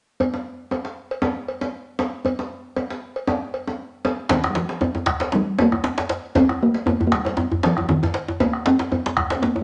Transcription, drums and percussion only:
0.20 cowbell medium
0.20 djembe bass medium
0.34 djembe slap soft
0.34 djembe tone soft
0.71 cowbell soft
0.71 djembe tone medium
0.85 djembe slap soft
1.11 cowbell soft
1.22 djembe slap medium
1.22 djembe tone medium
1.22 djembe bass medium
1.48 cowbell soft
1.61 djembe slap soft
1.61 djembe tone soft
1.99 cowbell soft
1.99 djembe slap medium
1.99 djembe tone medium
2.25 cowbell medium
2.25 djembe bass medium
2.39 djembe slap soft
2.39 djembe tone soft
2.76 cowbell soft
2.76 djembe tone medium
2.90 djembe slap soft
3.16 cowbell soft
3.27 djembe slap medium
3.27 djembe tone medium
3.27 djembe bass medium
3.54 cowbell soft
3.68 djembe slap soft
3.68 djembe tone soft
4.05 cowbell soft
4.05 djembe slap medium
4.05 djembe tone medium
4.29 bombo low medium
4.29 cowbell medium
4.29 djembe slap medium
4.29 djembe tone medium
4.29 djembe bass medium
4.44 bombo rim medium
4.44 djembe slap medium
4.55 djembe slap medium
4.55 djembe slap soft
4.69 djembe slap medium
4.81 cowbell soft
4.81 djembe tone medium
4.81 djembe bass medium
4.95 djembe tone medium
4.95 djembe tone soft
5.06 bombo rim medium
5.06 bombo low medium
5.06 djembe slap medium
5.20 bombo rim soft
5.20 cowbell soft
5.20 djembe slap medium
5.32 djembe slap medium
5.32 djembe bass medium
5.58 bombo rim soft
5.58 cowbell soft
5.58 djembe slap medium
5.58 djembe tone medium
5.72 bombo rim medium
5.72 bombo low medium
5.72 djembe slap soft
5.72 djembe tone medium
5.84 bombo rim soft
5.84 djembe slap medium
5.84 djembe bass medium
5.98 djembe slap medium
6.09 cowbell soft
6.09 djembe slap medium
6.35 bombo low medium
6.35 cowbell medium
6.35 djembe slap medium
6.35 djembe tone medium
6.35 djembe bass medium
6.49 bombo rim medium
6.49 djembe tone medium
6.61 djembe slap soft
6.74 djembe slap soft
6.86 cowbell soft
6.86 djembe tone medium
6.86 djembe bass medium
7.00 djembe tone soft
7.00 djembe bass medium
7.12 bombo rim medium
7.12 bombo low medium
7.12 djembe slap medium
7.25 cowbell soft
7.25 djembe slap medium
7.25 djembe tone medium
7.37 djembe tone medium
7.37 djembe bass medium
7.52 djembe bass medium
7.63 bombo rim soft
7.63 cowbell soft
7.63 djembe slap medium
7.63 djembe tone medium
7.77 bombo rim medium
7.77 bombo low medium
7.77 djembe slap soft
7.77 djembe tone medium
7.88 bombo rim soft
7.88 djembe tone loud
7.88 djembe bass medium
8.03 djembe slap medium
8.03 djembe bass medium
8.14 cowbell soft
8.14 djembe slap medium
8.28 djembe tone medium
8.40 bombo low medium
8.40 cowbell medium
8.40 djembe slap medium
8.40 djembe tone medium
8.40 djembe bass medium
8.53 bombo rim medium
8.66 djembe slap loud
8.66 djembe slap soft
8.79 djembe slap medium
8.79 djembe slap soft
8.92 cowbell soft
8.92 djembe tone medium
8.92 djembe bass medium
9.06 djembe slap medium
9.06 djembe tone medium
9.17 bombo rim medium
9.17 bombo low medium
9.17 djembe tone medium
9.30 bombo rim soft
9.30 cowbell soft
9.30 djembe slap medium
9.32 djembe slap medium
9.43 djembe slap medium
9.43 djembe bass medium
9.56 djembe tone medium

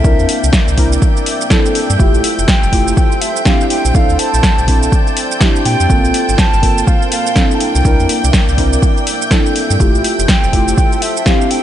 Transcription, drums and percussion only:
0.04 kick loud
0.04 shaker medium
0.19 shaker soft
0.29 open hi-hat loud
0.44 shaker medium
0.53 kick loud
0.53 snare loud
0.53 shaker medium
0.68 shaker soft
0.78 kick medium
0.78 open hi-hat loud
0.93 shaker medium
1.02 kick loud
1.02 shaker medium
1.17 shaker soft
1.26 open hi-hat loud
1.41 shaker medium
1.50 kick loud
1.50 snare loud
1.50 shaker medium
1.66 shaker soft
1.75 open hi-hat loud
1.90 shaker medium
2.00 kick loud
2.00 shaker medium
2.14 shaker soft
2.24 open hi-hat loud
2.39 shaker medium
2.48 kick loud
2.48 snare loud
2.48 shaker medium
2.63 shaker soft
2.73 kick medium
2.73 open hi-hat loud
2.88 shaker medium
2.97 kick loud
2.97 shaker medium
3.12 shaker soft
3.22 open hi-hat loud
3.36 shaker medium
3.45 kick loud
3.45 snare loud
3.45 shaker medium
3.61 shaker soft
3.70 open hi-hat loud
3.85 shaker medium
3.95 kick loud
3.95 shaker medium
4.10 shaker soft
4.19 open hi-hat loud
4.34 shaker medium
4.43 kick loud
4.43 snare loud
4.43 shaker medium
4.58 shaker soft
4.68 kick medium
4.68 open hi-hat loud
4.83 shaker medium
4.92 kick loud
4.92 shaker medium
5.07 shaker soft
5.17 open hi-hat loud
5.32 shaker medium
5.41 kick loud
5.41 snare loud
5.41 shaker medium
5.56 shaker soft
5.65 open hi-hat loud
5.80 shaker medium
5.90 kick loud
5.90 shaker medium
6.05 shaker soft
6.14 open hi-hat loud
6.29 shaker medium
6.38 kick loud
6.38 snare loud
6.38 shaker medium
6.54 shaker soft
6.63 kick medium
6.63 open hi-hat loud
6.78 shaker medium
6.87 kick loud
6.87 shaker medium
7.02 shaker soft
7.12 open hi-hat loud
7.27 shaker medium
7.36 kick loud
7.36 snare loud
7.36 shaker medium
7.51 shaker soft
7.60 open hi-hat medium
7.75 shaker medium
7.85 kick loud
7.85 shaker medium
8.00 shaker soft
8.09 open hi-hat loud
8.24 shaker medium
8.33 kick loud
8.33 snare loud
8.33 shaker medium
8.49 shaker soft
8.58 kick medium
8.58 open hi-hat medium
8.73 shaker medium
8.82 kick loud
8.82 shaker medium
8.97 shaker soft
9.07 open hi-hat loud
9.22 shaker medium
9.31 kick loud
9.31 snare loud
9.31 shaker medium
9.46 shaker soft
9.56 open hi-hat medium
9.71 shaker medium
9.80 kick loud
9.80 shaker medium
9.95 shaker soft
10.04 open hi-hat loud
10.19 shaker medium
10.28 kick loud
10.28 snare loud
10.28 shaker medium
10.44 shaker soft
10.53 kick medium
10.53 open hi-hat medium
10.68 shaker medium
10.78 kick loud
10.78 shaker medium
10.92 shaker soft
11.02 open hi-hat loud
11.17 shaker medium
11.26 kick loud
11.26 snare loud
11.26 shaker medium
11.41 shaker soft
11.51 open hi-hat medium

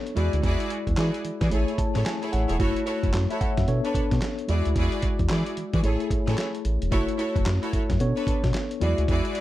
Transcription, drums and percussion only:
0.07 closed hi-hat soft
0.17 closed hi-hat medium
0.33 closed hi-hat medium
0.43 kick loud
0.43 closed hi-hat medium
0.60 closed hi-hat medium
0.70 closed hi-hat medium
0.87 kick medium
0.87 closed hi-hat soft
0.97 snare loud
0.97 clap medium
0.97 closed hi-hat medium
1.14 closed hi-hat medium
1.25 closed hi-hat medium
1.41 kick medium
1.41 snare medium
1.41 closed hi-hat medium
1.51 closed hi-hat medium
1.68 closed hi-hat soft
1.78 kick loud
1.78 closed hi-hat medium
1.95 snare medium
1.95 closed hi-hat medium
2.06 snare loud
2.06 clap medium
2.06 closed hi-hat medium
2.23 closed hi-hat soft
2.33 closed hi-hat medium
2.49 closed hi-hat medium
2.60 kick loud
2.60 closed hi-hat medium
2.76 closed hi-hat medium
2.87 closed hi-hat medium
3.03 kick medium
3.03 closed hi-hat soft
3.14 snare loud
3.14 clap medium
3.14 closed hi-hat medium
3.30 closed hi-hat soft
3.41 kick medium
3.41 closed hi-hat medium
3.57 kick medium
3.57 snare medium
3.57 closed hi-hat medium
3.68 closed hi-hat medium
3.85 closed hi-hat soft
3.95 kick medium
3.95 closed hi-hat medium
4.11 kick medium
4.11 snare medium
4.11 closed hi-hat medium
4.22 snare loud
4.22 clap medium
4.22 closed hi-hat medium
4.39 closed hi-hat soft
4.49 closed hi-hat medium
4.65 closed hi-hat medium
4.76 kick loud
4.76 closed hi-hat medium
4.92 closed hi-hat medium
5.02 kick loud
5.02 closed hi-hat medium
5.19 kick medium
5.19 closed hi-hat soft
5.29 snare loud
5.29 clap medium
5.29 closed hi-hat medium
5.46 closed hi-hat medium
5.57 closed hi-hat medium
5.73 kick medium
5.73 closed hi-hat medium
5.84 closed hi-hat medium
6.00 closed hi-hat soft
6.11 kick medium
6.11 closed hi-hat medium
6.28 snare medium
6.28 closed hi-hat medium
6.38 snare loud
6.38 clap medium
6.38 closed hi-hat medium
6.55 closed hi-hat soft
6.65 closed hi-hat medium
6.82 closed hi-hat medium
6.92 kick loud
6.92 closed hi-hat medium
7.09 closed hi-hat medium
7.19 closed hi-hat medium
7.36 kick medium
7.36 closed hi-hat soft
7.46 snare loud
7.46 clap loud
7.46 closed hi-hat medium
7.63 closed hi-hat medium
7.73 kick medium
7.73 closed hi-hat medium
7.90 kick medium
7.90 snare medium
7.90 closed hi-hat medium
8.00 closed hi-hat medium
8.17 closed hi-hat soft
8.27 kick loud
8.27 closed hi-hat medium
8.44 kick medium
8.44 snare medium
8.44 closed hi-hat medium
8.54 snare loud
8.54 clap medium
8.54 closed hi-hat medium
8.71 closed hi-hat soft
8.81 closed hi-hat medium
8.98 closed hi-hat medium
9.08 kick loud
9.08 closed hi-hat medium
9.25 closed hi-hat medium
9.35 closed hi-hat medium

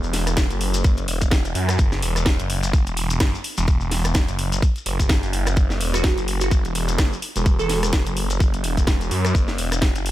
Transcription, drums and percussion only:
0.03 shekere soft
0.13 snare soft
0.13 open hi-hat loud
0.27 cross-stick medium
0.27 closed hi-hat medium
0.27 shekere medium
0.37 kick loud
0.37 snare loud
0.37 shekere medium
0.51 closed hi-hat medium
0.51 shekere soft
0.61 open hi-hat loud
0.74 closed hi-hat medium
0.74 shekere medium
0.84 kick loud
0.84 shekere medium
0.97 closed hi-hat medium
0.97 shekere soft
1.08 open hi-hat loud
1.21 kick medium
1.21 closed hi-hat medium
1.21 shekere medium
1.31 kick loud
1.31 snare loud
1.31 shekere medium
1.45 closed hi-hat soft
1.45 shekere soft
1.55 open hi-hat loud
1.69 cross-stick medium
1.69 closed hi-hat medium
1.69 shekere medium
1.79 kick loud
1.79 shekere medium
1.92 snare soft
1.92 shekere soft
2.02 open hi-hat loud
2.16 cross-stick medium
2.16 closed hi-hat medium
2.16 shekere medium
2.26 kick loud
2.26 snare loud
2.26 shekere medium
2.39 closed hi-hat medium
2.39 shekere soft
2.50 open hi-hat loud
2.63 closed hi-hat medium
2.63 shekere medium
2.73 kick loud
2.73 shekere medium
2.87 closed hi-hat medium
2.87 shekere soft
2.97 open hi-hat loud
3.10 closed hi-hat medium
3.10 shekere medium
3.20 kick loud
3.20 cross-stick medium
3.20 snare loud
3.20 shekere medium
3.35 shekere soft
3.44 open hi-hat loud
3.57 closed hi-hat medium
3.57 shekere medium
3.68 kick loud
3.68 shekere medium
3.81 shekere soft
3.91 snare soft
3.91 open hi-hat loud
4.04 cross-stick medium
4.04 closed hi-hat medium
4.04 shekere medium
4.14 kick loud
4.14 snare loud
4.14 shekere medium
4.29 closed hi-hat medium
4.29 shekere soft
4.39 open hi-hat loud
4.52 closed hi-hat medium
4.52 shekere medium
4.62 kick loud
4.62 shekere medium
4.76 closed hi-hat soft
4.76 shekere soft
4.86 open hi-hat loud
5.00 kick medium
5.00 closed hi-hat medium
5.00 shekere medium
5.09 kick loud
5.09 snare loud
5.09 shekere medium
5.23 closed hi-hat soft
5.23 shekere soft
5.33 open hi-hat loud
5.47 cross-stick medium
5.47 closed hi-hat medium
5.47 shekere medium
5.56 kick loud
5.56 shekere medium
5.70 snare soft
5.70 shekere soft
5.81 open hi-hat loud
5.94 cross-stick medium
5.94 closed hi-hat medium
5.94 shekere medium
6.04 kick loud
6.04 snare loud
6.04 shekere medium
6.18 closed hi-hat medium
6.18 shekere soft
6.28 open hi-hat loud
6.41 closed hi-hat medium
6.41 shekere medium
6.51 kick loud
6.51 shekere medium
6.65 closed hi-hat medium
6.65 shekere soft
6.75 open hi-hat loud
6.88 closed hi-hat medium
6.88 shekere medium
6.98 kick loud
6.98 cross-stick medium
6.98 snare loud
6.98 shekere medium
7.13 shekere soft
7.22 open hi-hat loud
7.36 closed hi-hat medium
7.36 shekere medium
7.46 kick loud
7.46 shekere medium
7.59 shekere soft
7.69 snare soft
7.69 open hi-hat loud
7.83 cross-stick medium
7.83 closed hi-hat medium
7.83 shekere medium
7.93 kick loud
7.93 snare loud
7.93 shekere medium
8.06 closed hi-hat medium
8.06 shekere soft
8.17 open hi-hat loud
8.30 closed hi-hat medium
8.30 shekere medium
8.40 kick loud
8.40 shekere medium
8.54 closed hi-hat soft
8.54 shekere soft
8.64 open hi-hat loud
8.77 kick medium
8.77 closed hi-hat medium
8.77 shekere medium
8.87 kick loud
8.87 snare loud
8.87 shekere medium
9.01 closed hi-hat soft
9.01 shekere soft
9.11 open hi-hat loud
9.25 cross-stick medium
9.25 closed hi-hat medium
9.25 shekere medium
9.35 kick loud
9.35 shekere medium
9.48 snare soft
9.48 shekere soft
9.58 open hi-hat loud
9.72 cross-stick medium
9.72 closed hi-hat medium
9.72 shekere medium
9.82 kick loud
9.82 snare loud
9.82 shekere medium
9.96 closed hi-hat medium
9.96 shekere soft
10.06 open hi-hat loud

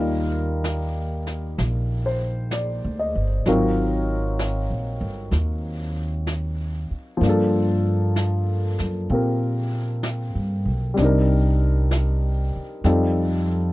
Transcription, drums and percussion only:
0.64 brush sweep soft
0.64 snare soft
0.64 hi-hat pedal soft
1.26 snare soft
1.58 brush sweep soft
1.58 snare soft
2.51 brush sweep soft
2.51 snare soft
2.51 hi-hat pedal soft
3.45 brush sweep soft
3.45 snare soft
4.39 brush sweep soft
4.39 snare soft
4.39 hi-hat pedal soft
5.32 brush sweep soft
5.32 snare soft
6.27 brush sweep soft
6.27 snare soft
6.27 hi-hat pedal soft
7.23 brush sweep soft
7.23 snare soft
8.16 brush sweep soft
8.16 snare soft
8.16 hi-hat pedal soft
8.78 snare soft
9.10 brush sweep soft
10.03 brush sweep soft
10.03 snare soft
10.03 hi-hat pedal medium
10.97 brush sweep soft
10.97 snare soft
11.91 brush sweep soft
11.91 snare soft
11.91 hi-hat pedal medium
12.84 brush sweep soft
12.84 snare soft

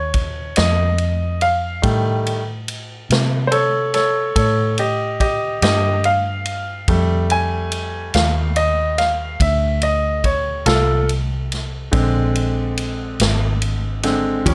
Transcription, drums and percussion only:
0.14 kick medium
0.14 ride medium
0.56 snare loud
0.56 ride medium
0.98 ride soft
1.41 ride medium
1.83 kick loud
1.83 ride medium
2.27 ride medium
2.68 ride medium
3.10 snare loud
3.10 ride medium
3.52 ride medium
3.94 snare soft
3.94 ride medium
4.36 kick medium
4.36 ride medium
4.78 ride medium
5.20 kick medium
5.20 ride medium
5.62 snare loud
5.62 ride medium
6.04 ride medium
6.46 ride medium
6.88 kick loud
6.88 ride medium
7.30 ride medium
7.72 ride medium
8.14 snare loud
8.14 ride medium
8.56 ride medium
8.98 snare soft
8.98 ride medium
9.40 kick medium
9.40 ride medium
9.82 ride medium
10.24 kick medium
10.24 ride medium
10.66 snare loud
10.66 ride medium
11.09 ride medium
11.52 snare soft
11.52 ride medium
11.93 kick loud
11.93 ride medium
12.36 ride medium
12.78 ride medium
13.20 snare loud
13.20 ride medium
13.62 ride medium
14.03 snare soft
14.03 ride medium
14.46 kick medium
14.46 ride medium

